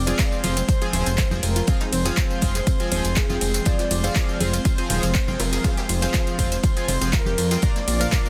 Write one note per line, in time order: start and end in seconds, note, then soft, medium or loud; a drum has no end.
0.00 0.13 F1 loud
0.00 8.29 F3 medium
0.00 7.59 G#3 medium
0.00 7.59 C4 loud
0.00 8.29 C5 medium
0.00 0.45 D5 loud
0.00 8.29 C6 medium
0.07 0.41 F3 medium
0.07 0.41 C4 medium
0.07 0.41 F4 medium
0.07 0.15 G#4 loud
0.07 0.41 G#4 medium
0.07 0.41 F5 loud
0.07 closed hi-hat medium
0.07 tambourine medium
0.07 cowbell medium
0.07 high conga medium
0.19 0.28 C4 medium
0.19 kick loud
0.19 snare loud
0.19 clap loud
0.19 closed hi-hat medium
0.19 tambourine medium
0.32 0.40 C4 medium
0.32 tambourine soft
0.43 0.63 F1 medium
0.43 0.52 F3 medium
0.43 0.52 C4 medium
0.43 0.52 F4 loud
0.43 0.52 F4 medium
0.43 0.52 G#4 medium
0.43 0.67 C5 loud
0.43 0.52 F5 medium
0.43 open hi-hat loud
0.43 ride medium
0.43 tambourine medium
0.43 high conga medium
0.56 0.65 C4 medium
0.56 closed hi-hat soft
0.56 closed hi-hat medium
0.56 tambourine medium
0.56 cowbell medium
0.68 0.77 C4 medium
0.68 1.44 C5 loud
0.68 kick loud
0.68 closed hi-hat medium
0.68 tambourine medium
0.68 tambourine loud
0.82 0.91 F3 medium
0.82 0.91 C4 medium
0.82 0.91 F4 medium
0.82 0.91 G#4 medium
0.82 0.89 G#4 loud
0.82 0.91 G#5 loud
0.82 closed hi-hat soft
0.82 tambourine soft
0.93 1.03 D#1 loud
0.93 1.07 F3 medium
0.93 1.02 C4 medium
0.93 1.07 C4 medium
0.93 1.07 F4 medium
0.93 1.07 G#4 medium
0.93 1.07 G#5 loud
0.93 snare soft
0.93 open hi-hat loud
0.93 ride medium
0.93 tambourine medium
0.93 high conga medium
1.06 1.25 F1 medium
1.06 1.14 C4 medium
1.06 closed hi-hat medium
1.06 tambourine medium
1.18 kick loud
1.18 snare loud
1.18 clap loud
1.18 closed hi-hat medium
1.18 tambourine medium
1.31 1.40 F1 medium
1.31 1.39 F3 medium
1.31 1.39 C4 medium
1.31 1.39 F4 medium
1.31 1.39 G#4 medium
1.31 1.39 G5 medium
1.31 tambourine soft
1.31 high conga loud
1.43 1.62 F1 loud
1.43 1.52 C4 medium
1.43 1.69 A#4 medium
1.43 open hi-hat medium
1.43 ride medium
1.43 tambourine medium
1.43 cowbell medium
1.56 1.64 F4 medium
1.56 snare medium
1.56 closed hi-hat medium
1.56 tambourine medium
1.67 1.76 F3 medium
1.67 1.76 C4 medium
1.67 1.76 F4 medium
1.67 1.92 G#4 loud
1.67 1.76 G#4 medium
1.67 1.76 F5 medium
1.67 kick loud
1.67 closed hi-hat medium
1.67 tambourine medium
1.67 high conga loud
1.80 1.89 D#4 medium
1.80 snare soft
1.80 closed hi-hat soft
1.80 tambourine soft
1.92 2.11 F1 loud
1.92 2.01 C4 medium
1.92 2.88 C5 loud
1.92 open hi-hat loud
1.92 ride medium
1.92 tambourine medium
2.05 2.39 F3 medium
2.05 2.39 C4 medium
2.05 2.39 F4 medium
2.05 2.13 G#4 loud
2.05 2.39 G#4 medium
2.05 2.39 F5 medium
2.05 snare soft
2.05 closed hi-hat medium
2.05 tambourine medium
2.05 cowbell loud
2.05 high conga medium
2.17 2.26 C4 medium
2.17 kick loud
2.17 snare loud
2.17 clap loud
2.17 closed hi-hat medium
2.17 tambourine medium
2.30 2.38 C4 medium
2.30 tambourine soft
2.41 2.61 F1 medium
2.41 2.50 F3 medium
2.41 2.51 C4 medium
2.41 2.50 C4 medium
2.41 2.50 F4 medium
2.41 2.50 G#4 medium
2.41 2.50 F5 medium
2.41 kick medium
2.41 open hi-hat loud
2.41 ride medium
2.41 tambourine medium
2.41 high conga loud
2.55 2.63 G#4 medium
2.55 snare medium
2.55 closed hi-hat medium
2.55 tambourine medium
2.67 2.76 C4 medium
2.67 kick loud
2.67 closed hi-hat medium
2.67 tambourine loud
2.67 tambourine medium
2.80 2.89 F3 medium
2.80 2.89 C4 medium
2.80 2.89 F4 medium
2.80 2.89 G#4 medium
2.80 2.89 G#5 loud
2.80 closed hi-hat soft
2.80 tambourine soft
2.92 3.01 D#1 loud
2.92 3.05 F3 loud
2.92 3.00 C4 medium
2.92 3.05 C4 medium
2.92 3.05 F4 medium
2.92 3.05 G#4 medium
2.92 3.15 C5 loud
2.92 3.05 G#5 loud
2.92 open hi-hat loud
2.92 ride medium
2.92 tambourine medium
2.92 high conga medium
3.05 3.23 F1 medium
3.05 closed hi-hat medium
3.05 tambourine medium
3.16 3.25 C4 medium
3.16 3.62 G#4 loud
3.16 kick loud
3.16 snare loud
3.16 clap loud
3.16 closed hi-hat medium
3.16 tambourine medium
3.29 3.38 F1 medium
3.29 3.37 F3 medium
3.29 3.37 C4 medium
3.29 3.37 F4 medium
3.29 3.37 F4 loud
3.29 3.37 G#4 medium
3.29 3.37 G5 medium
3.29 snare soft
3.29 tambourine soft
3.29 high conga loud
3.41 3.60 F1 loud
3.41 3.50 C4 medium
3.41 open hi-hat medium
3.41 ride medium
3.41 tambourine medium
3.54 3.62 C4 medium
3.54 snare medium
3.54 closed hi-hat medium
3.54 tambourine medium
3.65 3.74 F3 medium
3.65 3.74 C4 medium
3.65 3.74 F4 medium
3.65 3.74 G#4 medium
3.65 3.75 C5 loud
3.65 4.42 D5 loud
3.65 3.74 F5 medium
3.65 kick loud
3.65 closed hi-hat medium
3.65 tambourine loud
3.65 tambourine medium
3.65 high conga loud
3.79 3.87 F4 medium
3.79 snare soft
3.79 closed hi-hat soft
3.79 tambourine soft
3.91 4.10 F1 loud
3.91 4.00 F4 medium
3.91 open hi-hat loud
3.91 ride medium
3.91 tambourine medium
4.04 4.38 F3 medium
4.04 4.38 C4 medium
4.04 4.38 F4 medium
4.04 4.38 G#4 medium
4.04 4.12 C5 loud
4.04 4.38 F5 loud
4.04 closed hi-hat medium
4.04 tambourine medium
4.04 cowbell loud
4.04 high conga medium
4.16 4.24 F4 medium
4.16 kick loud
4.16 snare loud
4.16 clap loud
4.16 closed hi-hat medium
4.16 tambourine medium
4.29 4.37 F4 medium
4.29 tambourine soft
4.40 4.59 F1 medium
4.40 4.49 F3 medium
4.40 4.49 C4 medium
4.40 4.49 F4 medium
4.40 4.49 G#4 loud
4.40 4.49 G#4 medium
4.40 4.64 C5 loud
4.40 4.49 F5 medium
4.40 open hi-hat loud
4.40 ride medium
4.40 tambourine medium
4.40 high conga loud
4.53 4.61 F4 medium
4.53 closed hi-hat medium
4.53 closed hi-hat soft
4.53 tambourine medium
4.53 cowbell medium
4.65 4.74 F4 medium
4.65 5.41 C5 loud
4.65 kick loud
4.65 closed hi-hat medium
4.65 tambourine medium
4.78 4.88 F3 medium
4.78 4.88 C4 medium
4.78 4.88 F4 medium
4.78 4.88 G#4 medium
4.78 4.86 C5 medium
4.78 4.88 G#5 loud
4.78 closed hi-hat soft
4.78 tambourine soft
4.90 5.00 D#1 loud
4.90 5.03 F3 loud
4.90 5.03 C4 medium
4.90 5.03 F4 medium
4.90 4.99 F4 medium
4.90 5.03 G#4 medium
4.90 5.03 G#5 loud
4.90 snare soft
4.90 open hi-hat loud
4.90 ride medium
4.90 tambourine medium
4.90 high conga medium
5.03 5.21 F1 loud
5.03 5.11 F4 medium
5.03 closed hi-hat soft
5.03 tambourine medium
5.15 kick loud
5.15 snare loud
5.15 clap loud
5.15 closed hi-hat medium
5.15 tambourine medium
5.28 5.37 F1 loud
5.28 5.35 F3 medium
5.28 5.35 C4 medium
5.28 5.35 F4 medium
5.28 5.36 F4 medium
5.28 5.35 G#4 medium
5.28 5.35 G5 medium
5.28 tambourine soft
5.28 high conga loud
5.39 5.59 F1 loud
5.39 5.48 F4 medium
5.39 5.66 A#4 loud
5.39 snare loud
5.39 open hi-hat medium
5.39 ride medium
5.39 tambourine medium
5.39 cowbell medium
5.53 5.61 G#4 medium
5.53 snare loud
5.53 closed hi-hat soft
5.53 tambourine medium
5.64 5.73 F3 medium
5.64 5.73 C4 medium
5.64 5.73 F4 medium
5.64 5.90 G#4 medium
5.64 5.73 G#4 medium
5.64 5.73 F5 medium
5.64 kick loud
5.64 snare loud
5.64 closed hi-hat medium
5.64 tambourine medium
5.64 high conga medium
5.77 5.85 G4 medium
5.77 snare loud
5.77 closed hi-hat soft
5.77 tambourine medium
5.77 tambourine soft
5.89 6.08 F1 loud
5.89 5.98 F4 medium
5.89 6.88 C5 loud
5.89 open hi-hat loud
5.89 ride medium
5.89 tambourine medium
6.02 6.36 F3 medium
6.02 6.36 C4 medium
6.02 6.36 F4 medium
6.02 6.36 G#4 medium
6.02 6.10 C5 loud
6.02 6.36 F5 loud
6.02 snare soft
6.02 closed hi-hat soft
6.02 tambourine medium
6.02 cowbell loud
6.02 high conga medium
6.14 6.23 F4 medium
6.14 kick loud
6.14 snare loud
6.14 clap loud
6.14 closed hi-hat medium
6.14 tambourine medium
6.27 6.35 F4 medium
6.27 closed hi-hat soft
6.27 tambourine soft
6.38 6.58 F1 medium
6.38 6.47 F3 medium
6.38 6.47 C4 medium
6.38 6.47 F4 medium
6.38 6.47 G#4 medium
6.38 6.47 F5 medium
6.38 kick medium
6.38 open hi-hat loud
6.38 ride medium
6.38 tambourine medium
6.38 high conga medium
6.52 6.60 C5 medium
6.52 snare medium
6.52 closed hi-hat medium
6.52 tambourine medium
6.63 6.72 F4 medium
6.63 kick loud
6.63 closed hi-hat medium
6.63 tambourine medium
6.76 6.86 F3 medium
6.76 6.86 C4 medium
6.76 6.86 F4 medium
6.76 6.86 G#4 medium
6.76 6.86 G#5 loud
6.76 closed hi-hat soft
6.76 tambourine soft
6.88 6.98 F1 loud
6.88 6.97 F4 medium
6.88 7.11 C5 loud
6.88 open hi-hat loud
6.88 ride medium
6.88 tambourine medium
6.88 high conga medium
7.01 7.20 F1 medium
7.01 7.09 F3 medium
7.01 7.09 C4 medium
7.01 7.09 F4 medium
7.01 7.09 G#4 medium
7.01 7.09 F5 medium
7.01 closed hi-hat soft
7.01 tambourine medium
7.13 7.22 F4 medium
7.13 7.59 A#4 loud
7.13 kick loud
7.13 snare loud
7.13 clap loud
7.13 closed hi-hat medium
7.13 tambourine medium
7.25 7.35 F1 loud
7.25 7.34 G4 medium
7.25 snare medium
7.25 tambourine soft
7.25 high conga loud
7.38 7.57 F2 medium
7.38 7.47 F4 medium
7.38 open hi-hat medium
7.38 ride medium
7.38 tambourine medium
7.51 7.59 C4 medium
7.51 7.59 F4 medium
7.51 7.59 G#4 medium
7.51 7.59 G5 medium
7.51 snare medium
7.51 closed hi-hat soft
7.51 tambourine medium
7.62 7.71 A#2 medium
7.62 8.29 A#3 medium
7.62 8.29 D4 medium
7.62 7.71 D4 medium
7.62 7.71 F4 medium
7.62 7.72 A#4 loud
7.62 7.71 A#4 medium
7.62 8.29 D5 loud
7.62 7.71 F5 medium
7.62 kick loud
7.62 closed hi-hat medium
7.62 tambourine loud
7.62 tambourine medium
7.62 high conga medium
7.76 7.84 A#3 medium
7.76 snare medium
7.76 closed hi-hat soft
7.76 tambourine soft
7.88 8.07 A#1 loud
7.88 7.96 A#3 medium
7.88 open hi-hat loud
7.88 ride medium
7.88 tambourine medium
8.00 8.29 A#2 medium
8.00 8.29 D4 medium
8.00 8.29 F4 medium
8.00 8.29 A#4 medium
8.00 8.09 A#4 medium
8.00 8.29 F5 loud
8.00 closed hi-hat medium
8.00 tambourine medium
8.00 cowbell loud
8.00 high conga medium
8.11 8.21 A#3 medium
8.11 kick loud
8.11 snare loud
8.11 clap loud
8.11 closed hi-hat medium
8.11 tambourine loud
8.11 tambourine medium
8.25 8.29 A#3 medium
8.25 tambourine soft